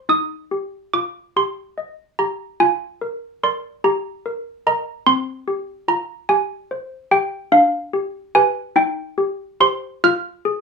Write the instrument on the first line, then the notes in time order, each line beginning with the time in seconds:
handbells
0.09 D#4 D#6
0.51 G4
0.94 F4 D6
1.36 G4 C6
1.78 D#5
2.19 G4 A#5
2.60 F4 G#5
3.01 A#4
3.43 A#4 D5 C6
3.84 G4 A#5
4.26 A#4
4.67 A#4 D#5 A#5
5.07 C4 C6
5.48 G4
5.88 F4 A#5
6.29 G4 G#5
6.71 C5
7.11 G4 G5
7.52 D4 F5
7.93 G4
8.35 G4 B4 G#5
8.76 D#4 G5
9.18 G4
9.60 G4 C5 C6
10.04 F4 F6
10.45 G#4